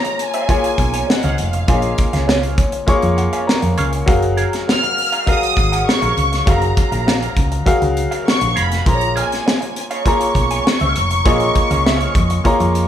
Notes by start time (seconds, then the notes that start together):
Already playing: A#3 F4 G#4 C#5 A#5
0.04 muted clean electric guitar stroke, closed hi-hat
0.19 G#5, closed hi-hat
0.33 G#4 C#5 F5, closed hi-hat
0.48 A#3 F4 G#4 C#5 F5 G#5, kick, closed hi-hat
0.64 closed hi-hat
0.78 B1, muted clean electric guitar stroke, kick, closed hi-hat
0.93 G#4 C#5 G#5, closed hi-hat
1.08 D#5 F#5, muted clean electric guitar stroke, snare
1.23 C#2 G#4 C#5 F5, closed hi-hat
1.38 F1 F5, muted clean electric guitar stroke, closed hi-hat
1.53 muted clean electric guitar stroke, closed hi-hat
1.68 A#1 A#3 F4 G#4 C#5 F5 G#5, kick, closed hi-hat
1.82 closed hi-hat
1.98 muted clean electric guitar stroke, kick, closed hi-hat
2.13 C#2 G#4 C#5 F5, snare, closed hi-hat
2.28 G#4 C#5 F5, snare
2.43 closed hi-hat
2.58 C#5, muted clean electric guitar stroke, kick, closed hi-hat
2.72 muted clean electric guitar stroke, closed hi-hat
2.87 A#3 F4 G#4 C#5 F5 C#6, muted clean electric guitar stroke, muted fingered electric bass stroke, kick, closed hi-hat
3.02 F2, muted clean electric guitar stroke, closed hi-hat
3.17 F#5, closed hi-hat
3.33 G#4 C#5 F5 G#5, closed hi-hat
3.47 A#4 A#5, muted clean electric guitar stroke, snare
3.62 F2, muted clean electric guitar stroke, closed hi-hat
3.77 C#2 G#4 C#5 F5 C#6, closed hi-hat
3.92 muted clean electric guitar stroke, closed hi-hat
4.06 F#1 F#3 F#4 G#4 A#4 F5, kick, closed hi-hat
4.22 closed hi-hat
4.37 G#4 A#4 F5, closed hi-hat
4.53 snare, closed hi-hat
4.68 F6, muted clean electric guitar stroke, snare
4.83 muted clean electric guitar stroke, closed hi-hat
4.98 open hi-hat
5.12 G#4 A#4 F5, closed hi-hat
5.26 F#3 F#4 G#4 A#4 F5 D#6, kick, closed hi-hat
5.43 closed hi-hat
5.57 G#1 G#4, muted clean electric guitar stroke, kick, closed hi-hat
5.72 G#4 A#4 F#5, closed hi-hat
5.87 C#6, muted clean electric guitar stroke, snare
6.02 A#1 G#4 A#4 F5, closed hi-hat
6.17 C#2, muted clean electric guitar stroke, closed hi-hat
6.32 muted clean electric guitar stroke, snare, closed hi-hat
6.46 F#1 F#3 F#4 G#4 A#4 F5 A#5, kick, closed hi-hat
6.61 closed hi-hat
6.77 muted clean electric guitar stroke, kick, closed hi-hat
6.92 A#1 G#4 A#4 F5, closed hi-hat
7.07 G#4 A#4 F5, snare
7.22 closed hi-hat
7.36 C#2, muted clean electric guitar stroke, kick, closed hi-hat
7.51 muted clean electric guitar stroke, closed hi-hat
7.66 F#3 F#4 G#4 A#4 F5, muted fingered electric bass stroke, muted clean electric guitar stroke, kick, closed hi-hat
7.81 C#2, muted clean electric guitar stroke, closed hi-hat
7.97 closed hi-hat
8.11 G#4 A#4 F5, closed hi-hat
8.27 C#6, muted clean electric guitar stroke, snare
8.41 A#1, muted clean electric guitar stroke, closed hi-hat
8.56 F1 G#4 A#4 F5 B5, closed hi-hat
8.71 muted clean electric guitar stroke, snare, closed hi-hat
8.86 A#1 A#3 F4 G#4 C5 A#5, kick, closed hi-hat
8.94 C#5
9.01 closed hi-hat
9.16 G#4 C#5 F5 G#5, closed hi-hat
9.32 snare, closed hi-hat
9.46 muted clean electric guitar stroke, snare
9.61 muted clean electric guitar stroke, closed hi-hat
9.76 G#5, closed hi-hat
9.91 G#4 C#5 F5 C#6, closed hi-hat
10.06 A#3 F4 G#4 C#5 F5 A#5, kick, closed hi-hat
10.20 closed hi-hat
10.35 B1, muted clean electric guitar stroke, kick, closed hi-hat
10.50 G#4 C#5 G#5, closed hi-hat
10.66 muted clean electric guitar stroke, snare
10.80 C#2 G#4 C#5 F5, closed hi-hat
10.95 F1, muted clean electric guitar stroke, closed hi-hat
11.10 muted clean electric guitar stroke, closed hi-hat
11.25 A#1 A#3 F4 G#4 C#5 D#5 F5, kick, closed hi-hat
11.40 closed hi-hat
11.55 muted clean electric guitar stroke, kick, closed hi-hat
11.70 C#2 G#4 C#5 F5, closed hi-hat
11.85 G4 C5 E5, snare
11.96 G#4 C#5 F5
12.00 closed hi-hat
12.15 F2, muted clean electric guitar stroke, kick, closed hi-hat
12.30 muted clean electric guitar stroke, closed hi-hat
12.44 A#3 F4 G#4 C#5 A#5, muted clean electric guitar stroke, kick, closed hi-hat
12.60 F2, muted clean electric guitar stroke, closed hi-hat
12.75 closed hi-hat